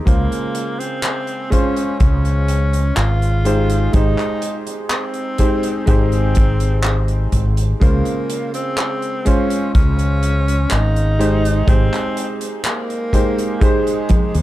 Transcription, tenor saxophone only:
0.07 0.81 A#3 loud
0.79 1.53 C4 loud
1.51 1.99 C#4 loud
2.00 2.98 C#4 loud
2.96 3.95 F4 loud
3.94 4.64 D#4 loud
4.91 5.83 C4 loud
5.88 7.29 C4 loud
7.82 8.50 A#3 loud
8.55 9.28 C4 loud
9.27 9.74 C#4 loud
9.75 10.74 C#4 loud
10.72 11.70 D#4 loud
11.69 12.39 C4 loud
12.66 13.64 A#3 loud
13.62 14.42 G#3 medium

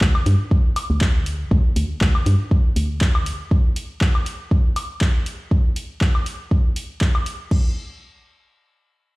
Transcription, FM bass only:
0.01 0.19 D2 loud
0.26 0.35 G2 loud
0.90 1.45 D2 medium
1.51 1.60 D2 loud
1.76 1.85 D2 medium
2.01 2.19 D2 loud
2.26 2.35 G2 loud
2.76 3.33 D2 medium

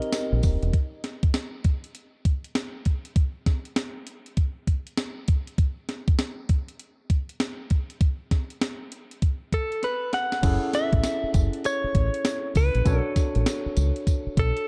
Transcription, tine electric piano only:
0.00 0.71 C4 medium
0.00 0.71 D#4 medium
0.00 0.72 G4 medium
0.00 0.72 A#4 medium
10.42 12.81 C#4 medium
10.42 12.82 E4 medium
10.42 12.82 G#4 medium
10.42 12.82 A4 medium
12.85 12.94 C#4 medium
12.85 14.68 F#4 medium
12.85 14.68 A4 medium
12.85 14.68 C#5 medium
12.91 14.68 D4 medium

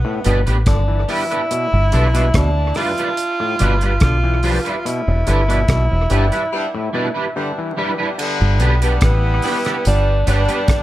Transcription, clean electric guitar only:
0.24 0.37 B3 medium
0.24 0.38 D4 medium
0.24 0.38 G4 medium
0.24 0.38 B4 medium
0.46 0.57 B3 soft
0.46 0.56 D4 medium
0.46 0.56 G4 medium
0.46 0.56 B4 medium
1.08 1.21 B3 medium
1.08 1.21 D4 medium
1.08 1.22 G4 medium
1.08 1.22 B4 loud
1.31 1.41 B3 medium
1.31 1.40 D4 medium
1.31 1.40 G4 medium
1.31 1.40 B4 medium
1.93 2.05 G3 medium
1.93 2.06 D4 medium
1.93 2.06 F4 medium
1.93 2.06 B4 medium
2.15 2.24 G3 soft
2.15 2.24 D4 soft
2.15 2.24 F4 soft
2.15 2.23 B4 medium
2.76 2.89 G3 medium
2.76 2.89 D4 medium
2.76 2.89 F4 medium
2.76 2.89 B4 medium
2.98 3.08 G3 soft
2.98 3.08 D4 medium
2.98 3.07 F4 medium
2.98 3.07 B4 medium
3.59 3.72 G3 medium
3.59 3.72 D4 medium
3.59 3.73 F4 medium
3.59 3.73 B4 loud
3.82 3.91 G3 medium
3.82 3.91 D4 medium
3.82 3.91 F4 medium
3.82 3.91 B4 medium
4.43 4.56 G3 medium
4.43 4.56 D4 medium
4.43 4.56 F4 medium
4.43 4.57 B4 medium
4.65 4.75 G3 medium
4.65 4.75 D4 medium
4.65 4.74 F4 medium
4.65 4.74 B4 medium
5.27 5.39 G3 medium
5.27 5.40 D4 medium
5.27 5.40 E4 medium
5.27 5.40 B4 medium
5.48 5.58 G3 medium
5.48 5.58 D4 medium
5.48 5.58 E4 medium
5.48 5.57 B4 medium
6.10 6.23 G3 medium
6.10 6.23 D4 medium
6.10 6.23 E4 medium
6.10 6.24 B4 medium
6.32 6.42 G3 soft
6.32 6.42 D4 soft
6.32 6.41 E4 medium
6.32 6.41 B4 medium
6.93 7.06 G3 medium
6.93 7.06 D4 medium
6.93 7.06 E4 medium
6.93 7.06 B4 medium
7.14 7.25 G3 soft
7.14 7.25 D4 medium
7.14 7.24 E4 soft
7.14 7.24 B4 medium
7.77 7.89 G3 medium
7.77 7.90 D4 medium
7.77 7.90 E4 medium
7.77 7.90 B4 medium
7.98 8.08 G3 medium
7.98 8.08 D4 medium
7.98 8.08 E4 medium
7.98 8.08 B4 medium
8.60 8.73 B3 medium
8.60 8.73 D4 medium
8.60 8.73 G4 medium
8.60 8.74 B4 loud
8.82 8.92 B3 medium
8.82 8.91 D4 soft
8.82 8.91 G4 medium
8.82 8.91 B4 medium
9.43 9.56 B3 medium
9.43 9.56 D4 medium
9.43 9.57 G4 medium
9.43 9.57 B4 medium
9.65 9.75 B3 medium
9.65 9.75 D4 medium
9.65 9.75 G4 medium
9.65 9.74 B4 medium
10.27 10.39 B3 medium
10.27 10.40 D4 medium
10.27 10.40 G4 medium
10.27 10.40 B4 medium
10.48 10.58 B3 medium
10.48 10.58 D4 soft
10.48 10.58 G4 medium
10.48 10.58 B4 medium

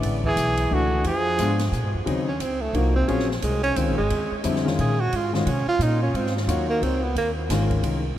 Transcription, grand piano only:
0.00 0.20 D3 medium
0.00 0.20 G#3 medium
0.00 0.20 C#4 medium
0.00 0.21 E4 medium
0.71 1.05 E3 medium
0.71 1.05 A3 soft
0.71 1.05 D4 soft
0.71 1.05 F#4 medium
1.39 1.58 G#3 medium
1.39 1.58 B3 medium
1.39 1.58 D4 medium
1.39 1.59 F4 medium
2.06 2.25 C#3 medium
2.06 2.25 F#3 medium
2.06 2.26 C4 medium
2.06 2.26 D#4 medium
2.75 2.94 F3 medium
2.75 2.94 A#3 soft
2.75 2.94 D#4 soft
2.75 2.94 F#4 medium
3.08 3.27 F#3 medium
3.08 3.28 C4 medium
3.08 3.28 F4 medium
3.08 3.28 G#4 medium
3.77 3.96 D#3 medium
3.77 3.96 G#3 soft
3.77 3.96 C#4 soft
3.77 3.97 F4 medium
4.43 4.63 D3 medium
4.43 4.63 G3 soft
4.43 4.64 C4 medium
4.43 4.64 E4 medium
4.65 4.95 D#3 medium
4.65 4.95 G#3 medium
4.65 4.95 C#4 medium
4.65 4.96 F4 medium
5.33 5.45 D#3 medium
5.33 5.45 G#3 medium
5.33 5.46 C#4 medium
5.33 5.46 F4 medium
6.47 6.99 A#3 medium
6.47 6.99 D#4 medium
6.47 6.99 F4 medium
6.47 6.99 F#4 medium
7.50 8.01 D#3 medium
7.50 8.01 G#3 medium
7.50 8.01 C#4 medium
7.50 8.01 F4 medium

